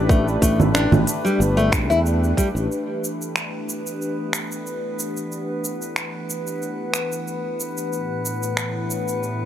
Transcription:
0.00 0.36 A1 loud
0.00 9.45 A3 medium
0.00 9.45 D4 medium
0.00 9.45 G4 medium
0.00 9.45 B4 medium
0.09 0.26 A3 medium
0.09 kick loud
0.09 shaker soft
0.28 shaker soft
0.42 0.86 A1 loud
0.42 0.59 A3 medium
0.42 kick medium
0.42 closed hi-hat medium
0.42 shaker medium
0.60 low conga medium
0.60 shaker soft
0.75 0.91 D4 medium
0.75 finger snap medium
0.75 shaker soft
0.92 1.04 A1 loud
0.92 low conga medium
0.92 shaker soft
1.07 closed hi-hat medium
1.07 shaker medium
1.25 1.39 G3 medium
1.25 shaker soft
1.40 1.90 G1 medium
1.40 shaker soft
1.57 1.72 A3 loud
1.57 shaker soft
1.72 finger snap medium
1.72 kick loud
1.72 closed hi-hat loud
1.72 shaker medium
1.90 2.32 E2 medium
1.90 1.99 E4 medium
1.90 shaker soft
2.06 shaker soft
2.24 shaker soft
2.37 2.47 G3 medium
2.37 kick medium
2.37 closed hi-hat loud
2.37 shaker medium
2.55 2.67 A1 medium
2.55 shaker soft
2.69 9.45 E3 medium
2.69 9.45 B3 medium
2.69 9.45 B4 medium
2.69 shaker soft
3.04 shaker medium
3.22 shaker soft
3.36 finger snap medium
3.36 shaker soft
3.69 shaker medium
3.87 shaker soft
4.02 shaker soft
4.33 finger snap medium
4.33 shaker medium
4.52 shaker soft
4.67 shaker soft
4.99 shaker medium
5.17 shaker soft
5.32 shaker soft
5.65 shaker medium
5.82 shaker soft
5.96 finger snap medium
5.96 shaker soft
6.30 shaker medium
6.47 shaker soft
6.62 shaker soft
6.94 finger snap medium
6.94 shaker medium
7.12 shaker soft
7.28 shaker soft
7.60 shaker medium
7.77 shaker soft
7.91 9.45 A2 medium
7.91 shaker soft
8.25 shaker medium
8.43 shaker soft
8.57 finger snap medium
8.57 shaker soft
8.90 shaker medium
9.08 shaker soft
9.23 shaker soft

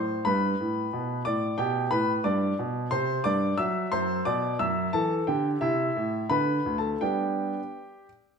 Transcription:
0.00 0.20 A2 soft
0.00 0.24 C5 soft
0.00 0.22 C6 medium
0.25 0.53 G2 soft
0.25 1.22 B4 medium
0.25 1.21 B5 medium
0.60 0.86 A2 soft
0.93 1.20 B2 soft
1.25 1.53 A2 medium
1.25 1.57 D5 soft
1.25 1.59 D6 medium
1.58 1.85 B2 medium
1.58 1.90 G4 medium
1.58 1.88 G5 medium
1.91 2.18 A2 medium
1.91 2.23 B4 medium
1.91 2.11 B5 medium
2.24 2.51 G2 medium
2.24 2.56 D5 medium
2.24 2.54 D6 medium
2.59 2.85 B2 medium
2.91 3.18 C3 medium
2.91 3.23 C5 medium
2.91 3.21 C6 medium
3.24 3.52 G2 medium
3.24 3.56 D5 medium
3.24 3.58 D6 medium
3.58 3.85 F#3 medium
3.58 3.90 E5 medium
3.58 3.92 E6 medium
3.92 4.19 F#2 medium
3.92 4.24 C5 medium
3.92 4.25 C6 medium
4.25 4.53 B2 medium
4.25 4.57 D5 medium
4.25 4.56 D6 medium
4.59 4.87 F#2 medium
4.59 4.91 E5 medium
4.59 4.93 E6 medium
4.93 5.20 E3 medium
4.93 5.25 A4 medium
4.93 5.13 A5 medium
5.27 5.55 D3 medium
5.27 5.59 G4 soft
5.27 5.47 G5 medium
5.61 5.88 C3 medium
5.61 6.27 E4 medium
5.61 6.30 E5 medium
5.96 6.24 A2 medium
6.30 6.58 D3 medium
6.30 6.74 B4 medium
6.30 6.77 B5 medium
6.66 6.94 D2 soft
6.78 7.01 A4 soft
6.78 7.02 A5 medium
7.01 7.52 G3 soft
7.01 7.59 B3 soft
7.01 7.59 D4 soft
7.01 8.06 G4 soft
7.01 8.09 G5 medium

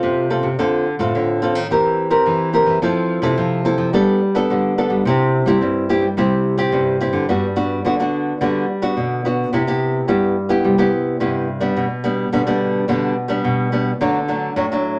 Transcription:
0.00 0.56 C3 medium
0.00 0.39 C3 medium
0.00 0.26 C4 medium
0.00 0.26 F4 medium
0.00 0.26 A4 medium
0.30 0.47 C4 medium
0.30 0.47 F4 soft
0.30 0.47 A4 medium
0.43 0.56 C3 medium
0.59 1.12 D3 medium
0.59 0.94 D3 medium
0.59 0.85 C4 medium
0.59 0.85 F4 soft
0.59 0.85 A4 medium
0.99 1.12 A2 medium
0.99 1.38 C4 medium
0.99 1.38 F4 medium
0.99 1.38 A4 medium
1.15 1.68 A2 medium
1.15 1.55 D3 medium
1.42 1.59 C4 medium
1.42 1.59 F4 medium
1.42 1.59 A4 medium
1.55 1.68 D#3 medium
1.71 2.18 E3 medium
1.71 2.24 E3 medium
1.71 2.08 C4 medium
1.71 2.08 G4 medium
1.71 2.09 A#4 medium
2.10 2.49 C4 medium
2.10 2.49 G4 medium
2.10 2.49 A#4 medium
2.26 2.79 E3 medium
2.26 2.62 E3 medium
2.53 2.77 C4 medium
2.53 2.77 G4 medium
2.53 2.78 A#4 medium
2.66 2.79 E3 medium
2.82 3.18 F3 medium
2.82 3.35 F3 medium
2.82 3.20 C4 medium
2.82 3.20 E4 medium
2.82 3.20 A4 medium
3.22 3.35 C3 loud
3.22 3.61 C4 medium
3.22 3.61 E4 medium
3.22 3.61 A4 medium
3.38 3.91 C3 medium
3.38 3.73 F3 medium
3.65 3.89 C4 medium
3.65 3.89 E4 medium
3.65 3.89 A4 medium
3.78 3.91 F3 medium
3.93 4.46 G3 medium
3.93 4.41 G3 medium
3.93 4.20 B3 medium
3.93 4.20 D4 medium
3.93 4.20 A4 medium
4.35 4.73 B3 medium
4.35 4.73 D4 medium
4.35 4.73 A4 medium
4.50 5.03 D3 medium
4.50 4.85 G3 medium
4.78 5.01 B3 medium
4.78 5.01 D4 medium
4.78 5.01 A4 medium
4.90 5.02 G3 medium
5.05 5.41 C3 loud
5.05 5.59 C3 medium
5.05 5.44 C4 medium
5.05 5.44 E4 medium
5.05 5.44 G4 medium
5.46 5.58 G3 medium
5.46 5.85 C4 medium
5.46 5.85 E4 medium
5.46 5.85 G4 medium
5.61 6.15 G2 medium
5.61 6.01 C4 medium
5.89 6.06 C4 medium
5.89 6.06 E4 medium
5.89 6.06 G4 medium
6.01 6.14 G3 medium
6.17 6.70 C3 medium
6.17 6.64 G3 medium
6.17 6.55 C4 medium
6.17 6.55 E4 medium
6.17 6.55 G4 medium
6.58 6.96 C4 medium
6.58 6.96 E4 medium
6.58 6.96 G4 medium
6.72 7.26 G2 medium
6.72 7.08 C3 medium
7.01 7.24 C4 medium
7.01 7.24 E4 medium
7.01 7.25 G4 medium
7.13 7.26 D3 medium
7.29 7.76 G2 medium
7.29 7.82 G3 medium
7.29 7.45 B3 medium
7.29 7.45 D4 medium
7.29 7.46 F#4 medium
7.56 7.80 B3 medium
7.56 7.80 D4 medium
7.56 7.80 F#4 medium
7.85 8.32 D3 medium
7.85 8.38 D3 medium
7.85 7.93 B3 medium
7.85 7.93 D4 medium
7.85 7.94 F#4 medium
8.00 8.37 B3 medium
8.00 8.37 D4 medium
8.00 8.37 F#4 medium
8.41 8.64 D3 medium
8.41 8.94 G3 medium
8.41 8.67 B3 medium
8.41 8.67 D4 medium
8.41 8.67 F#4 medium
8.82 9.20 B3 medium
8.82 9.20 D4 medium
8.82 9.20 F#4 medium
8.97 9.44 B2 medium
8.97 9.50 D3 soft
9.25 9.50 B3 medium
9.25 9.51 D4 medium
9.25 9.51 F#4 medium
9.53 10.00 C3 medium
9.53 10.06 C3 medium
9.53 9.61 B3 medium
9.53 9.61 E4 medium
9.53 9.62 G4 medium
9.67 10.04 B3 medium
9.67 10.05 E4 medium
9.67 10.05 G4 medium
10.08 10.61 G2 medium
10.08 10.56 G3 medium
10.08 10.35 B3 medium
10.08 10.35 E4 medium
10.08 10.35 G4 medium
10.49 10.73 B3 medium
10.49 10.74 E4 medium
10.49 10.74 G4 medium
10.64 11.18 C3 medium
10.64 10.88 G3 medium
10.78 11.16 B3 medium
10.78 11.16 E4 medium
10.78 11.16 G4 medium
11.20 11.73 G2 medium
11.20 11.68 C3 medium
11.20 11.47 B3 medium
11.20 11.47 E4 medium
11.20 11.47 G4 medium
11.61 11.85 G3 medium
11.61 11.85 B3 medium
11.61 11.85 D4 medium
11.77 12.30 B2 medium
11.77 12.24 B2 medium
12.04 12.28 G3 medium
12.04 12.28 B3 medium
12.04 12.28 D4 medium
12.32 12.86 B2 medium
12.32 12.80 D3 medium
12.32 12.41 G3 medium
12.32 12.41 B3 medium
12.32 12.41 D4 medium
12.47 12.84 G3 medium
12.47 12.84 B3 medium
12.47 12.84 D4 medium
12.88 13.41 B2 medium
12.88 13.12 D3 medium
12.88 13.15 G3 medium
12.88 13.15 B3 medium
12.88 13.15 D4 medium
13.28 13.67 G3 medium
13.28 13.67 B3 medium
13.28 13.67 D4 medium
13.44 13.92 B2 medium
13.44 13.98 B2 medium
13.72 13.90 G3 medium
13.72 13.90 B3 medium
13.72 13.91 D4 medium
14.01 14.48 D3 medium
14.01 14.54 D3 medium
14.01 14.17 F#3 medium
14.01 14.17 A3 medium
14.01 14.17 D4 medium
14.28 14.52 F#3 soft
14.28 14.52 A3 medium
14.28 14.52 D4 medium
14.56 14.99 A2 medium
14.56 14.65 F#3 medium
14.56 14.65 A3 medium
14.56 14.65 D4 medium
14.72 14.99 F#3 soft
14.72 14.99 A3 medium
14.72 14.99 D4 medium

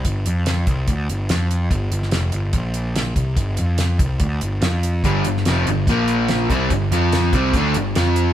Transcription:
0.05 0.24 G1 medium
0.05 kick medium
0.05 closed hi-hat medium
0.26 0.65 F2 medium
0.26 closed hi-hat medium
0.46 snare medium
0.46 closed hi-hat medium
0.67 0.87 C2 medium
0.67 kick medium
0.67 closed hi-hat medium
0.88 1.08 D2 medium
0.88 kick medium
0.88 closed hi-hat medium
1.09 1.29 G1 medium
1.09 closed hi-hat medium
1.29 1.69 F2 medium
1.29 snare loud
1.29 closed hi-hat medium
1.51 closed hi-hat medium
1.70 1.91 G1 medium
1.70 kick medium
1.70 closed hi-hat medium
1.92 2.12 G1 medium
1.92 closed hi-hat medium
2.02 snare soft
2.11 2.33 F1 medium
2.11 snare loud
2.11 closed hi-hat medium
2.32 2.53 G1 medium
2.32 closed hi-hat medium
2.53 3.13 A#1 medium
2.53 kick medium
2.53 closed hi-hat medium
2.74 closed hi-hat medium
2.96 snare loud
2.96 closed hi-hat medium
3.16 3.36 C2 medium
3.16 kick medium
3.16 closed hi-hat medium
3.37 3.57 G1 medium
3.37 kick medium
3.37 closed hi-hat medium
3.57 3.98 F2 medium
3.57 closed hi-hat medium
3.78 snare medium
3.78 closed hi-hat medium
3.99 4.19 C2 medium
3.99 kick loud
3.99 closed hi-hat medium
4.20 4.40 D2 medium
4.20 kick medium
4.20 closed hi-hat medium
4.41 4.61 G1 medium
4.41 closed hi-hat medium
4.62 5.01 F2 medium
4.62 snare loud
4.62 closed hi-hat medium
4.83 closed hi-hat medium
5.04 5.24 G1 medium
5.04 5.25 G2 medium
5.04 5.25 D3 loud
5.04 5.26 G3 loud
5.04 kick loud
5.04 closed hi-hat medium
5.25 5.45 G1 medium
5.25 5.43 G2 medium
5.25 5.43 D3 medium
5.25 closed hi-hat medium
5.37 snare soft
5.45 5.66 F1 medium
5.45 5.67 F2 medium
5.45 5.68 C3 medium
5.45 5.68 F3 loud
5.45 snare loud
5.45 closed hi-hat medium
5.67 5.86 G1 medium
5.67 5.85 G2 medium
5.67 5.85 D3 medium
5.67 closed hi-hat medium
5.87 6.46 A#1 medium
5.87 6.51 A#2 medium
5.87 6.50 F3 medium
5.87 6.51 A#3 loud
5.87 kick loud
5.87 closed hi-hat medium
6.08 closed hi-hat medium
6.28 snare loud
6.28 closed hi-hat medium
6.50 6.69 C2 medium
6.50 6.71 C3 medium
6.50 6.71 G3 medium
6.50 6.71 C4 loud
6.50 kick medium
6.50 closed hi-hat medium
6.70 6.90 G1 medium
6.70 6.88 G2 medium
6.70 6.88 D3 medium
6.70 kick medium
6.70 closed hi-hat medium
6.91 7.30 F2 medium
6.91 7.33 F3 medium
6.91 7.34 C4 medium
6.91 7.34 F4 loud
6.91 closed hi-hat medium
7.12 snare loud
7.12 closed hi-hat medium
7.33 7.53 C2 medium
7.33 7.54 C3 medium
7.33 7.55 G3 medium
7.33 7.55 C4 loud
7.33 kick loud
7.33 closed hi-hat medium
7.53 7.73 D2 medium
7.53 7.76 D3 medium
7.53 7.76 A3 medium
7.53 7.76 D4 medium
7.53 kick medium
7.53 closed hi-hat medium
7.74 7.94 G1 medium
7.74 7.93 G2 medium
7.74 7.93 D3 medium
7.74 closed hi-hat medium
7.95 8.33 F2 medium
7.95 8.33 F3 medium
7.95 8.33 C4 medium
7.95 8.33 F4 loud
7.95 snare loud
7.95 closed hi-hat medium
8.16 closed hi-hat medium

